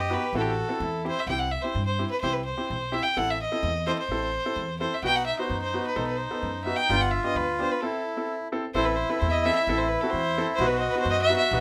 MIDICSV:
0, 0, Header, 1, 5, 480
1, 0, Start_track
1, 0, Tempo, 469851
1, 338, Time_signature, 2, 2, 24, 8
1, 5616, Tempo, 462963
1, 11947, End_track
2, 0, Start_track
2, 0, Title_t, "Violin"
2, 0, Program_c, 0, 40
2, 3, Note_on_c, 0, 75, 87
2, 141, Note_on_c, 0, 71, 99
2, 156, Note_off_c, 0, 75, 0
2, 360, Note_off_c, 0, 71, 0
2, 383, Note_on_c, 0, 69, 90
2, 420, Note_on_c, 0, 67, 74
2, 436, Note_off_c, 0, 69, 0
2, 510, Note_on_c, 0, 69, 85
2, 525, Note_off_c, 0, 67, 0
2, 1078, Note_off_c, 0, 69, 0
2, 1098, Note_on_c, 0, 72, 97
2, 1216, Note_on_c, 0, 76, 98
2, 1232, Note_off_c, 0, 72, 0
2, 1310, Note_off_c, 0, 76, 0
2, 1316, Note_on_c, 0, 79, 100
2, 1425, Note_on_c, 0, 78, 85
2, 1440, Note_off_c, 0, 79, 0
2, 1551, Note_on_c, 0, 76, 83
2, 1566, Note_off_c, 0, 78, 0
2, 1648, Note_on_c, 0, 72, 94
2, 1663, Note_off_c, 0, 76, 0
2, 1889, Note_off_c, 0, 72, 0
2, 1895, Note_on_c, 0, 72, 85
2, 2123, Note_off_c, 0, 72, 0
2, 2153, Note_on_c, 0, 71, 91
2, 2250, Note_off_c, 0, 71, 0
2, 2256, Note_on_c, 0, 72, 104
2, 2381, Note_on_c, 0, 71, 76
2, 2396, Note_off_c, 0, 72, 0
2, 2496, Note_off_c, 0, 71, 0
2, 2502, Note_on_c, 0, 72, 92
2, 2998, Note_on_c, 0, 76, 102
2, 3013, Note_off_c, 0, 72, 0
2, 3096, Note_on_c, 0, 79, 101
2, 3111, Note_off_c, 0, 76, 0
2, 3247, Note_on_c, 0, 78, 101
2, 3262, Note_off_c, 0, 79, 0
2, 3376, Note_on_c, 0, 76, 89
2, 3391, Note_off_c, 0, 78, 0
2, 3481, Note_off_c, 0, 76, 0
2, 3496, Note_on_c, 0, 75, 86
2, 3944, Note_on_c, 0, 72, 101
2, 3960, Note_off_c, 0, 75, 0
2, 3961, Note_on_c, 0, 75, 74
2, 3976, Note_off_c, 0, 72, 0
2, 3999, Note_on_c, 0, 72, 89
2, 4014, Note_off_c, 0, 75, 0
2, 4062, Note_off_c, 0, 72, 0
2, 4072, Note_on_c, 0, 72, 100
2, 4864, Note_off_c, 0, 72, 0
2, 4900, Note_on_c, 0, 72, 84
2, 5047, Note_on_c, 0, 76, 90
2, 5062, Note_off_c, 0, 72, 0
2, 5142, Note_off_c, 0, 76, 0
2, 5148, Note_on_c, 0, 79, 102
2, 5269, Note_on_c, 0, 78, 88
2, 5284, Note_off_c, 0, 79, 0
2, 5370, Note_off_c, 0, 78, 0
2, 5376, Note_on_c, 0, 76, 86
2, 5489, Note_off_c, 0, 76, 0
2, 5506, Note_on_c, 0, 72, 74
2, 5726, Note_off_c, 0, 72, 0
2, 5745, Note_on_c, 0, 72, 83
2, 5967, Note_off_c, 0, 72, 0
2, 6002, Note_on_c, 0, 71, 73
2, 6096, Note_on_c, 0, 72, 81
2, 6112, Note_off_c, 0, 71, 0
2, 6203, Note_off_c, 0, 72, 0
2, 6209, Note_on_c, 0, 71, 77
2, 6311, Note_on_c, 0, 72, 74
2, 6327, Note_off_c, 0, 71, 0
2, 6795, Note_off_c, 0, 72, 0
2, 6801, Note_on_c, 0, 76, 87
2, 6924, Note_on_c, 0, 79, 104
2, 6940, Note_off_c, 0, 76, 0
2, 7187, Note_on_c, 0, 78, 80
2, 7202, Note_off_c, 0, 79, 0
2, 7286, Note_on_c, 0, 76, 76
2, 7301, Note_off_c, 0, 78, 0
2, 7417, Note_off_c, 0, 76, 0
2, 7428, Note_on_c, 0, 75, 79
2, 7550, Note_on_c, 0, 71, 78
2, 7565, Note_off_c, 0, 75, 0
2, 7790, Note_off_c, 0, 71, 0
2, 7800, Note_on_c, 0, 72, 88
2, 7917, Note_on_c, 0, 71, 78
2, 7932, Note_off_c, 0, 72, 0
2, 8013, Note_on_c, 0, 69, 77
2, 8029, Note_off_c, 0, 71, 0
2, 8502, Note_off_c, 0, 69, 0
2, 8979, Note_on_c, 0, 72, 98
2, 9095, Note_on_c, 0, 71, 78
2, 9110, Note_off_c, 0, 72, 0
2, 9206, Note_on_c, 0, 72, 84
2, 9222, Note_off_c, 0, 71, 0
2, 9345, Note_on_c, 0, 71, 74
2, 9361, Note_off_c, 0, 72, 0
2, 9453, Note_on_c, 0, 72, 92
2, 9468, Note_off_c, 0, 71, 0
2, 9550, Note_off_c, 0, 72, 0
2, 9556, Note_on_c, 0, 76, 68
2, 9574, Note_on_c, 0, 75, 82
2, 9589, Note_off_c, 0, 76, 0
2, 9696, Note_off_c, 0, 75, 0
2, 9702, Note_on_c, 0, 76, 109
2, 9816, Note_off_c, 0, 76, 0
2, 9821, Note_on_c, 0, 76, 91
2, 10048, Note_on_c, 0, 72, 82
2, 10064, Note_off_c, 0, 76, 0
2, 10164, Note_on_c, 0, 71, 86
2, 10180, Note_off_c, 0, 72, 0
2, 10292, Note_on_c, 0, 69, 81
2, 10307, Note_off_c, 0, 71, 0
2, 10392, Note_on_c, 0, 72, 106
2, 10407, Note_off_c, 0, 69, 0
2, 10767, Note_off_c, 0, 72, 0
2, 10853, Note_on_c, 0, 72, 93
2, 10979, Note_on_c, 0, 71, 91
2, 10994, Note_off_c, 0, 72, 0
2, 11088, Note_on_c, 0, 72, 81
2, 11103, Note_off_c, 0, 71, 0
2, 11113, Note_on_c, 0, 75, 62
2, 11128, Note_off_c, 0, 72, 0
2, 11216, Note_on_c, 0, 71, 88
2, 11232, Note_off_c, 0, 75, 0
2, 11310, Note_off_c, 0, 71, 0
2, 11317, Note_on_c, 0, 72, 92
2, 11431, Note_on_c, 0, 75, 94
2, 11447, Note_off_c, 0, 72, 0
2, 11539, Note_off_c, 0, 75, 0
2, 11545, Note_on_c, 0, 76, 110
2, 11691, Note_off_c, 0, 76, 0
2, 11696, Note_on_c, 0, 76, 105
2, 11928, Note_off_c, 0, 76, 0
2, 11947, End_track
3, 0, Start_track
3, 0, Title_t, "Accordion"
3, 0, Program_c, 1, 21
3, 0, Note_on_c, 1, 67, 114
3, 356, Note_on_c, 1, 66, 102
3, 362, Note_off_c, 1, 67, 0
3, 828, Note_on_c, 1, 64, 73
3, 844, Note_off_c, 1, 66, 0
3, 1273, Note_off_c, 1, 64, 0
3, 5154, Note_on_c, 1, 63, 83
3, 7063, Note_on_c, 1, 65, 120
3, 7131, Note_off_c, 1, 63, 0
3, 8034, Note_on_c, 1, 64, 91
3, 8056, Note_off_c, 1, 65, 0
3, 8711, Note_off_c, 1, 64, 0
3, 9005, Note_on_c, 1, 64, 112
3, 10901, Note_on_c, 1, 66, 127
3, 10969, Note_off_c, 1, 64, 0
3, 11947, Note_off_c, 1, 66, 0
3, 11947, End_track
4, 0, Start_track
4, 0, Title_t, "Upright piano"
4, 0, Program_c, 2, 0
4, 101, Note_on_c, 2, 63, 65
4, 102, Note_on_c, 2, 59, 72
4, 106, Note_on_c, 2, 66, 75
4, 220, Note_off_c, 2, 59, 0
4, 220, Note_off_c, 2, 63, 0
4, 222, Note_off_c, 2, 66, 0
4, 354, Note_on_c, 2, 60, 66
4, 354, Note_on_c, 2, 64, 70
4, 362, Note_on_c, 2, 69, 77
4, 527, Note_off_c, 2, 60, 0
4, 527, Note_off_c, 2, 64, 0
4, 531, Note_off_c, 2, 69, 0
4, 704, Note_on_c, 2, 69, 71
4, 707, Note_on_c, 2, 64, 46
4, 708, Note_on_c, 2, 60, 56
4, 883, Note_off_c, 2, 69, 0
4, 884, Note_off_c, 2, 64, 0
4, 885, Note_off_c, 2, 60, 0
4, 1070, Note_on_c, 2, 60, 60
4, 1071, Note_on_c, 2, 64, 62
4, 1072, Note_on_c, 2, 67, 66
4, 1186, Note_off_c, 2, 60, 0
4, 1187, Note_off_c, 2, 64, 0
4, 1188, Note_off_c, 2, 67, 0
4, 1322, Note_on_c, 2, 64, 66
4, 1323, Note_on_c, 2, 60, 76
4, 1325, Note_on_c, 2, 67, 75
4, 1493, Note_off_c, 2, 64, 0
4, 1494, Note_off_c, 2, 60, 0
4, 1495, Note_off_c, 2, 67, 0
4, 1671, Note_on_c, 2, 64, 56
4, 1673, Note_on_c, 2, 67, 55
4, 1676, Note_on_c, 2, 60, 55
4, 1848, Note_off_c, 2, 64, 0
4, 1849, Note_off_c, 2, 67, 0
4, 1851, Note_off_c, 2, 60, 0
4, 2032, Note_on_c, 2, 60, 60
4, 2033, Note_on_c, 2, 67, 67
4, 2035, Note_on_c, 2, 64, 59
4, 2149, Note_off_c, 2, 60, 0
4, 2149, Note_off_c, 2, 67, 0
4, 2150, Note_off_c, 2, 64, 0
4, 2281, Note_on_c, 2, 60, 69
4, 2282, Note_on_c, 2, 64, 73
4, 2289, Note_on_c, 2, 67, 81
4, 2453, Note_off_c, 2, 60, 0
4, 2454, Note_off_c, 2, 64, 0
4, 2457, Note_off_c, 2, 67, 0
4, 2630, Note_on_c, 2, 67, 68
4, 2632, Note_on_c, 2, 60, 60
4, 2635, Note_on_c, 2, 64, 46
4, 2808, Note_off_c, 2, 67, 0
4, 2809, Note_off_c, 2, 60, 0
4, 2811, Note_off_c, 2, 64, 0
4, 2984, Note_on_c, 2, 64, 68
4, 2985, Note_on_c, 2, 67, 76
4, 2987, Note_on_c, 2, 60, 64
4, 3105, Note_off_c, 2, 64, 0
4, 3105, Note_off_c, 2, 67, 0
4, 3106, Note_off_c, 2, 60, 0
4, 3234, Note_on_c, 2, 60, 69
4, 3237, Note_on_c, 2, 69, 81
4, 3243, Note_on_c, 2, 64, 66
4, 3410, Note_off_c, 2, 60, 0
4, 3411, Note_off_c, 2, 69, 0
4, 3414, Note_off_c, 2, 64, 0
4, 3595, Note_on_c, 2, 69, 63
4, 3597, Note_on_c, 2, 64, 54
4, 3600, Note_on_c, 2, 60, 61
4, 3770, Note_off_c, 2, 69, 0
4, 3771, Note_off_c, 2, 64, 0
4, 3772, Note_off_c, 2, 60, 0
4, 3953, Note_on_c, 2, 69, 77
4, 3955, Note_on_c, 2, 64, 63
4, 3956, Note_on_c, 2, 60, 64
4, 4069, Note_off_c, 2, 69, 0
4, 4070, Note_off_c, 2, 60, 0
4, 4070, Note_off_c, 2, 64, 0
4, 4202, Note_on_c, 2, 64, 62
4, 4204, Note_on_c, 2, 60, 69
4, 4206, Note_on_c, 2, 69, 81
4, 4373, Note_off_c, 2, 60, 0
4, 4373, Note_off_c, 2, 64, 0
4, 4375, Note_off_c, 2, 69, 0
4, 4550, Note_on_c, 2, 60, 56
4, 4552, Note_on_c, 2, 64, 56
4, 4559, Note_on_c, 2, 69, 69
4, 4726, Note_off_c, 2, 60, 0
4, 4727, Note_off_c, 2, 64, 0
4, 4730, Note_off_c, 2, 69, 0
4, 4906, Note_on_c, 2, 60, 62
4, 4913, Note_on_c, 2, 69, 76
4, 4914, Note_on_c, 2, 64, 58
4, 5023, Note_off_c, 2, 60, 0
4, 5027, Note_off_c, 2, 64, 0
4, 5027, Note_off_c, 2, 69, 0
4, 5144, Note_on_c, 2, 59, 65
4, 5149, Note_on_c, 2, 63, 61
4, 5151, Note_on_c, 2, 66, 84
4, 5321, Note_off_c, 2, 59, 0
4, 5324, Note_off_c, 2, 63, 0
4, 5325, Note_off_c, 2, 66, 0
4, 5506, Note_on_c, 2, 59, 61
4, 5507, Note_on_c, 2, 66, 68
4, 5509, Note_on_c, 2, 63, 53
4, 5682, Note_off_c, 2, 59, 0
4, 5682, Note_off_c, 2, 66, 0
4, 5683, Note_off_c, 2, 63, 0
4, 5865, Note_on_c, 2, 59, 62
4, 5866, Note_on_c, 2, 63, 58
4, 5871, Note_on_c, 2, 66, 70
4, 5983, Note_off_c, 2, 59, 0
4, 5984, Note_off_c, 2, 63, 0
4, 5986, Note_off_c, 2, 66, 0
4, 6097, Note_on_c, 2, 59, 71
4, 6097, Note_on_c, 2, 69, 82
4, 6099, Note_on_c, 2, 63, 69
4, 6280, Note_off_c, 2, 59, 0
4, 6280, Note_off_c, 2, 69, 0
4, 6281, Note_off_c, 2, 63, 0
4, 6457, Note_on_c, 2, 63, 51
4, 6458, Note_on_c, 2, 69, 65
4, 6460, Note_on_c, 2, 59, 61
4, 6641, Note_off_c, 2, 63, 0
4, 6642, Note_off_c, 2, 69, 0
4, 6643, Note_off_c, 2, 59, 0
4, 6818, Note_on_c, 2, 59, 64
4, 6819, Note_on_c, 2, 63, 60
4, 6827, Note_on_c, 2, 66, 67
4, 6943, Note_off_c, 2, 59, 0
4, 6943, Note_off_c, 2, 63, 0
4, 6947, Note_off_c, 2, 66, 0
4, 7065, Note_on_c, 2, 62, 59
4, 7065, Note_on_c, 2, 67, 83
4, 7067, Note_on_c, 2, 59, 71
4, 7247, Note_off_c, 2, 62, 0
4, 7247, Note_off_c, 2, 67, 0
4, 7248, Note_off_c, 2, 59, 0
4, 7422, Note_on_c, 2, 59, 56
4, 7422, Note_on_c, 2, 67, 62
4, 7428, Note_on_c, 2, 62, 51
4, 7605, Note_off_c, 2, 59, 0
4, 7606, Note_off_c, 2, 67, 0
4, 7608, Note_off_c, 2, 62, 0
4, 7786, Note_on_c, 2, 59, 67
4, 7786, Note_on_c, 2, 62, 64
4, 7793, Note_on_c, 2, 67, 74
4, 7908, Note_off_c, 2, 59, 0
4, 7908, Note_off_c, 2, 62, 0
4, 7911, Note_off_c, 2, 67, 0
4, 8030, Note_on_c, 2, 60, 72
4, 8030, Note_on_c, 2, 64, 69
4, 8033, Note_on_c, 2, 69, 67
4, 8210, Note_off_c, 2, 60, 0
4, 8210, Note_off_c, 2, 64, 0
4, 8212, Note_off_c, 2, 69, 0
4, 8385, Note_on_c, 2, 60, 58
4, 8390, Note_on_c, 2, 64, 55
4, 8395, Note_on_c, 2, 69, 64
4, 8568, Note_off_c, 2, 60, 0
4, 8570, Note_off_c, 2, 64, 0
4, 8572, Note_off_c, 2, 69, 0
4, 8751, Note_on_c, 2, 64, 65
4, 8753, Note_on_c, 2, 60, 77
4, 8755, Note_on_c, 2, 69, 89
4, 8870, Note_off_c, 2, 64, 0
4, 8871, Note_off_c, 2, 60, 0
4, 8873, Note_off_c, 2, 69, 0
4, 8988, Note_on_c, 2, 64, 74
4, 8995, Note_on_c, 2, 60, 73
4, 8997, Note_on_c, 2, 69, 87
4, 9169, Note_off_c, 2, 64, 0
4, 9172, Note_off_c, 2, 60, 0
4, 9173, Note_off_c, 2, 69, 0
4, 9344, Note_on_c, 2, 60, 64
4, 9350, Note_on_c, 2, 64, 57
4, 9351, Note_on_c, 2, 69, 65
4, 9526, Note_off_c, 2, 60, 0
4, 9529, Note_off_c, 2, 64, 0
4, 9530, Note_off_c, 2, 69, 0
4, 9716, Note_on_c, 2, 60, 76
4, 9716, Note_on_c, 2, 64, 66
4, 9721, Note_on_c, 2, 69, 79
4, 9832, Note_off_c, 2, 60, 0
4, 9832, Note_off_c, 2, 64, 0
4, 9834, Note_off_c, 2, 69, 0
4, 9959, Note_on_c, 2, 60, 72
4, 9963, Note_on_c, 2, 64, 75
4, 9966, Note_on_c, 2, 69, 85
4, 10133, Note_off_c, 2, 60, 0
4, 10135, Note_off_c, 2, 64, 0
4, 10136, Note_off_c, 2, 69, 0
4, 10316, Note_on_c, 2, 60, 67
4, 10317, Note_on_c, 2, 64, 53
4, 10320, Note_on_c, 2, 66, 68
4, 10491, Note_off_c, 2, 60, 0
4, 10491, Note_off_c, 2, 64, 0
4, 10492, Note_off_c, 2, 66, 0
4, 10675, Note_on_c, 2, 60, 63
4, 10680, Note_on_c, 2, 64, 62
4, 10680, Note_on_c, 2, 69, 88
4, 10789, Note_off_c, 2, 60, 0
4, 10792, Note_off_c, 2, 64, 0
4, 10792, Note_off_c, 2, 69, 0
4, 10912, Note_on_c, 2, 59, 83
4, 10917, Note_on_c, 2, 63, 70
4, 10920, Note_on_c, 2, 66, 89
4, 11087, Note_off_c, 2, 59, 0
4, 11089, Note_off_c, 2, 63, 0
4, 11091, Note_off_c, 2, 66, 0
4, 11269, Note_on_c, 2, 59, 64
4, 11271, Note_on_c, 2, 63, 57
4, 11276, Note_on_c, 2, 66, 67
4, 11445, Note_off_c, 2, 59, 0
4, 11445, Note_off_c, 2, 63, 0
4, 11448, Note_off_c, 2, 66, 0
4, 11624, Note_on_c, 2, 63, 72
4, 11626, Note_on_c, 2, 59, 65
4, 11626, Note_on_c, 2, 66, 68
4, 11741, Note_off_c, 2, 63, 0
4, 11742, Note_off_c, 2, 59, 0
4, 11742, Note_off_c, 2, 66, 0
4, 11871, Note_on_c, 2, 59, 84
4, 11875, Note_on_c, 2, 63, 76
4, 11875, Note_on_c, 2, 66, 90
4, 11947, Note_off_c, 2, 59, 0
4, 11947, Note_off_c, 2, 63, 0
4, 11947, Note_off_c, 2, 66, 0
4, 11947, End_track
5, 0, Start_track
5, 0, Title_t, "Upright bass"
5, 0, Program_c, 3, 32
5, 0, Note_on_c, 3, 42, 88
5, 147, Note_off_c, 3, 42, 0
5, 334, Note_on_c, 3, 33, 87
5, 625, Note_off_c, 3, 33, 0
5, 820, Note_on_c, 3, 40, 92
5, 1109, Note_off_c, 3, 40, 0
5, 1293, Note_on_c, 3, 36, 86
5, 1585, Note_off_c, 3, 36, 0
5, 1786, Note_on_c, 3, 43, 83
5, 2074, Note_off_c, 3, 43, 0
5, 2277, Note_on_c, 3, 36, 92
5, 2562, Note_off_c, 3, 36, 0
5, 2761, Note_on_c, 3, 35, 89
5, 3044, Note_off_c, 3, 35, 0
5, 3236, Note_on_c, 3, 33, 87
5, 3521, Note_off_c, 3, 33, 0
5, 3707, Note_on_c, 3, 40, 96
5, 3994, Note_off_c, 3, 40, 0
5, 4174, Note_on_c, 3, 33, 78
5, 4464, Note_off_c, 3, 33, 0
5, 4658, Note_on_c, 3, 40, 88
5, 4946, Note_off_c, 3, 40, 0
5, 5134, Note_on_c, 3, 35, 78
5, 5422, Note_off_c, 3, 35, 0
5, 5615, Note_on_c, 3, 42, 86
5, 5906, Note_off_c, 3, 42, 0
5, 6097, Note_on_c, 3, 35, 88
5, 6388, Note_off_c, 3, 35, 0
5, 6577, Note_on_c, 3, 42, 83
5, 6869, Note_off_c, 3, 42, 0
5, 7065, Note_on_c, 3, 31, 97
5, 7355, Note_off_c, 3, 31, 0
5, 7535, Note_on_c, 3, 38, 83
5, 7828, Note_off_c, 3, 38, 0
5, 8983, Note_on_c, 3, 33, 91
5, 9272, Note_off_c, 3, 33, 0
5, 9471, Note_on_c, 3, 40, 97
5, 9758, Note_off_c, 3, 40, 0
5, 9943, Note_on_c, 3, 33, 93
5, 10232, Note_off_c, 3, 33, 0
5, 10419, Note_on_c, 3, 40, 87
5, 10708, Note_off_c, 3, 40, 0
5, 10891, Note_on_c, 3, 35, 101
5, 11181, Note_off_c, 3, 35, 0
5, 11375, Note_on_c, 3, 42, 97
5, 11663, Note_off_c, 3, 42, 0
5, 11853, Note_on_c, 3, 35, 98
5, 11947, Note_off_c, 3, 35, 0
5, 11947, End_track
0, 0, End_of_file